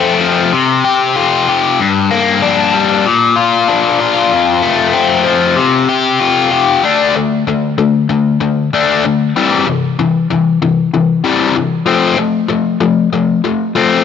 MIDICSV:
0, 0, Header, 1, 2, 480
1, 0, Start_track
1, 0, Tempo, 630252
1, 1363, Time_signature, 4, 2, 24, 8
1, 10694, End_track
2, 0, Start_track
2, 0, Title_t, "Overdriven electric guitar"
2, 0, Program_c, 0, 29
2, 0, Note_on_c, 0, 41, 65
2, 0, Note_on_c, 0, 57, 70
2, 0, Note_on_c, 0, 60, 62
2, 160, Note_on_c, 0, 53, 73
2, 395, Note_off_c, 0, 57, 0
2, 396, Note_off_c, 0, 60, 0
2, 399, Note_off_c, 0, 41, 0
2, 400, Note_off_c, 0, 53, 0
2, 401, Note_on_c, 0, 48, 66
2, 641, Note_on_c, 0, 67, 59
2, 880, Note_on_c, 0, 65, 61
2, 1123, Note_off_c, 0, 67, 0
2, 1132, Note_on_c, 0, 67, 56
2, 1362, Note_off_c, 0, 65, 0
2, 1364, Note_off_c, 0, 48, 0
2, 1367, Note_on_c, 0, 43, 63
2, 1368, Note_off_c, 0, 67, 0
2, 1605, Note_on_c, 0, 58, 68
2, 1845, Note_on_c, 0, 62, 69
2, 2090, Note_on_c, 0, 55, 75
2, 2326, Note_off_c, 0, 62, 0
2, 2327, Note_off_c, 0, 58, 0
2, 2329, Note_off_c, 0, 43, 0
2, 2329, Note_off_c, 0, 55, 0
2, 2330, Note_on_c, 0, 46, 66
2, 2563, Note_on_c, 0, 65, 63
2, 2805, Note_on_c, 0, 62, 56
2, 3047, Note_off_c, 0, 65, 0
2, 3050, Note_on_c, 0, 65, 60
2, 3288, Note_off_c, 0, 62, 0
2, 3291, Note_off_c, 0, 46, 0
2, 3293, Note_on_c, 0, 41, 67
2, 3525, Note_on_c, 0, 57, 60
2, 3760, Note_on_c, 0, 60, 60
2, 3997, Note_on_c, 0, 53, 69
2, 4241, Note_on_c, 0, 48, 60
2, 4244, Note_off_c, 0, 53, 0
2, 4246, Note_off_c, 0, 60, 0
2, 4249, Note_off_c, 0, 57, 0
2, 4253, Note_off_c, 0, 41, 0
2, 4484, Note_off_c, 0, 65, 0
2, 4487, Note_on_c, 0, 67, 63
2, 4721, Note_on_c, 0, 65, 61
2, 4954, Note_off_c, 0, 67, 0
2, 4963, Note_on_c, 0, 67, 68
2, 5202, Note_off_c, 0, 48, 0
2, 5205, Note_on_c, 0, 50, 70
2, 5207, Note_off_c, 0, 65, 0
2, 5208, Note_off_c, 0, 67, 0
2, 5211, Note_on_c, 0, 57, 78
2, 5216, Note_on_c, 0, 62, 87
2, 5434, Note_off_c, 0, 50, 0
2, 5437, Note_off_c, 0, 57, 0
2, 5440, Note_off_c, 0, 62, 0
2, 5447, Note_on_c, 0, 50, 67
2, 5453, Note_on_c, 0, 57, 81
2, 5666, Note_off_c, 0, 50, 0
2, 5669, Note_off_c, 0, 57, 0
2, 5690, Note_on_c, 0, 50, 70
2, 5699, Note_on_c, 0, 57, 78
2, 5907, Note_off_c, 0, 50, 0
2, 5912, Note_off_c, 0, 57, 0
2, 5925, Note_on_c, 0, 50, 71
2, 5927, Note_on_c, 0, 57, 80
2, 6145, Note_off_c, 0, 50, 0
2, 6145, Note_off_c, 0, 57, 0
2, 6163, Note_on_c, 0, 50, 74
2, 6164, Note_on_c, 0, 57, 73
2, 6383, Note_off_c, 0, 50, 0
2, 6384, Note_off_c, 0, 57, 0
2, 6400, Note_on_c, 0, 50, 62
2, 6402, Note_on_c, 0, 57, 80
2, 6622, Note_off_c, 0, 50, 0
2, 6623, Note_off_c, 0, 57, 0
2, 6652, Note_on_c, 0, 50, 77
2, 6657, Note_on_c, 0, 57, 89
2, 6658, Note_on_c, 0, 62, 87
2, 6877, Note_off_c, 0, 50, 0
2, 6879, Note_off_c, 0, 57, 0
2, 6880, Note_off_c, 0, 62, 0
2, 6893, Note_on_c, 0, 57, 59
2, 6894, Note_on_c, 0, 50, 56
2, 7107, Note_off_c, 0, 57, 0
2, 7108, Note_off_c, 0, 50, 0
2, 7128, Note_on_c, 0, 48, 83
2, 7130, Note_on_c, 0, 52, 92
2, 7137, Note_on_c, 0, 55, 89
2, 7354, Note_off_c, 0, 48, 0
2, 7355, Note_off_c, 0, 52, 0
2, 7359, Note_off_c, 0, 55, 0
2, 7366, Note_on_c, 0, 48, 70
2, 7366, Note_on_c, 0, 52, 74
2, 7583, Note_off_c, 0, 48, 0
2, 7583, Note_off_c, 0, 52, 0
2, 7608, Note_on_c, 0, 48, 74
2, 7610, Note_on_c, 0, 52, 84
2, 7824, Note_off_c, 0, 48, 0
2, 7825, Note_off_c, 0, 52, 0
2, 7848, Note_on_c, 0, 48, 75
2, 7848, Note_on_c, 0, 52, 92
2, 8063, Note_off_c, 0, 48, 0
2, 8063, Note_off_c, 0, 52, 0
2, 8088, Note_on_c, 0, 48, 66
2, 8090, Note_on_c, 0, 52, 81
2, 8303, Note_off_c, 0, 48, 0
2, 8304, Note_off_c, 0, 52, 0
2, 8330, Note_on_c, 0, 48, 60
2, 8333, Note_on_c, 0, 52, 71
2, 8543, Note_off_c, 0, 48, 0
2, 8545, Note_off_c, 0, 52, 0
2, 8559, Note_on_c, 0, 48, 82
2, 8563, Note_on_c, 0, 52, 76
2, 8568, Note_on_c, 0, 55, 84
2, 8787, Note_off_c, 0, 48, 0
2, 8789, Note_off_c, 0, 52, 0
2, 8791, Note_off_c, 0, 55, 0
2, 8801, Note_on_c, 0, 48, 69
2, 8801, Note_on_c, 0, 52, 71
2, 9018, Note_off_c, 0, 48, 0
2, 9018, Note_off_c, 0, 52, 0
2, 9032, Note_on_c, 0, 53, 95
2, 9037, Note_on_c, 0, 57, 87
2, 9043, Note_on_c, 0, 60, 95
2, 9262, Note_off_c, 0, 53, 0
2, 9264, Note_off_c, 0, 57, 0
2, 9268, Note_off_c, 0, 60, 0
2, 9274, Note_on_c, 0, 53, 63
2, 9274, Note_on_c, 0, 57, 85
2, 9493, Note_off_c, 0, 53, 0
2, 9493, Note_off_c, 0, 57, 0
2, 9509, Note_on_c, 0, 53, 67
2, 9518, Note_on_c, 0, 57, 89
2, 9730, Note_off_c, 0, 53, 0
2, 9734, Note_off_c, 0, 57, 0
2, 9752, Note_on_c, 0, 57, 79
2, 9753, Note_on_c, 0, 53, 85
2, 9970, Note_off_c, 0, 57, 0
2, 9971, Note_off_c, 0, 53, 0
2, 9996, Note_on_c, 0, 53, 80
2, 9999, Note_on_c, 0, 57, 71
2, 10212, Note_off_c, 0, 53, 0
2, 10213, Note_off_c, 0, 57, 0
2, 10235, Note_on_c, 0, 53, 61
2, 10241, Note_on_c, 0, 57, 75
2, 10450, Note_off_c, 0, 53, 0
2, 10453, Note_off_c, 0, 57, 0
2, 10473, Note_on_c, 0, 53, 80
2, 10478, Note_on_c, 0, 57, 85
2, 10487, Note_on_c, 0, 60, 79
2, 10694, Note_off_c, 0, 53, 0
2, 10694, Note_off_c, 0, 57, 0
2, 10694, Note_off_c, 0, 60, 0
2, 10694, End_track
0, 0, End_of_file